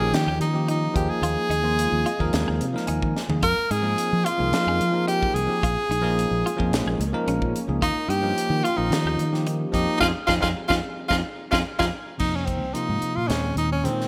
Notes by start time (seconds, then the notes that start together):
Already playing: D#3 A#3 C#4 F4 G4 G#4
0.00 A#1 F3 A#3 D#4 G4
0.13 D#3 G4, snare, closed hi-hat
0.27 D#2 G4
0.40 D#3 D#4, closed hi-hat
0.53 F3 A#3 D#4 G4
0.68 D#4, closed hi-hat
0.94 D#2 F3 G#3 A#3 C4 D#4 G4 G#4, kick, closed hi-hat
1.10 G#4
1.22 D#2 F4, closed hi-hat
1.49 D#2 D#4, closed hi-hat
1.62 F3 A#3 D#4 F4
1.79 closed hi-hat
1.92 D#2
2.06 F4 D#5, closed hi-hat
2.19 D#2 F3 A#3 D#4 A#4, kick
2.33 D#2 F5, snare, closed hi-hat
2.48 D#2 G#4
2.61 C3, closed hi-hat
2.73 F3 A#3 D#4 A#4, snare
2.87 D#2 D#4 G#5, closed hi-hat
3.02 D#3, kick
3.17 snare
3.28 D#3 F3 A#3 D#4 G#4, floor tom
3.41 F2 F3 C4 D#4 F4 G#4 A#4, kick, closed hi-hat
3.58 muted fingered electric bass stroke
3.71 G#2 D#4 G#4, closed hi-hat
3.82 F3 A#3 D#4 G#4
3.98 closed hi-hat
4.13 F3
4.25 F4, closed hi-hat
4.37 C2 F3 A#3 D#4 G#4
4.52 F3, snare, closed hi-hat
4.67 F2 G#4
4.80 F3, closed hi-hat
4.92 F3 A#3 D#4 A#4
5.07 D#4 G4, closed hi-hat
5.23 kick
5.34 C2 G#4, closed hi-hat
5.47 F3 A#3 D#4 G4
5.63 A#1 G#3 A#3 C#4 F4, kick, closed hi-hat
5.89 A#1 D#4, closed hi-hat
6.01 F3 A#3 D#4 G#4
6.19 closed hi-hat
6.31 A#1
6.46 F4, closed hi-hat
6.57 F2 F3 A#3 D#4 G#4, kick
6.71 A#1, snare, closed hi-hat
6.86 A#1 G#4
6.99 C#2, closed hi-hat
7.13 F3 A#3 D#4 A#4
7.27 A#1 C#4, closed hi-hat
7.42 A#2, kick
7.55 closed hi-hat
7.67 C#2 F3 A#3 D#4 G#4
7.81 D#2 D#3 D#4 F4 G4, kick, closed hi-hat
7.96 muted fingered electric bass stroke
8.08 G2 D#4 G4, closed hi-hat
8.22 F3 A#3 D#4 G4
8.38 closed hi-hat
8.50 D#3
8.64 F4, closed hi-hat
8.77 A#1 F3 A#3 D#4 F4
8.90 D#3, snare, closed hi-hat
9.05 D#2 G4
9.18 D#3, closed hi-hat
9.32 F3 A#3 D#4 G4, snare
9.46 D#4, closed hi-hat
9.72 F2 F3 A#3 C4 D#4 G4 G#4, kick, closed hi-hat
9.99 F2 C4 D#4 F4 G#4, kick, snare
10.27 F2 C4 D#4 F4 G#4, kick, snare
10.40 F2 C4 D#4 F4 G#4, kick, snare
10.68 F2 C4 D#4 F4 G#4, kick, snare
11.08 F2 C4 D#4 F4 G#4, kick, snare
11.51 F2 C4 D#4 F4 G#4, kick, snare
11.79 F2 C4 D#4 F4 G#4, kick, snare
12.18 F2 C3 F3 A#3 D#4, kick, crash
12.35 C#4
12.46 C4, kick, closed hi-hat
12.62 C2
12.73 C3 F3 A#3 D#4 F4, closed hi-hat
12.89 G#2
13.02 muted fingered electric bass stroke, closed hi-hat
13.16 A#2 F4
13.27 D#2 A#2 D#3 G#3 C4 C#4, snare, closed hi-hat
13.56 D#2 D#4, closed hi-hat
13.72 C#4
13.83 A#2 D#3 G#3 C4, closed hi-hat
14.01 snare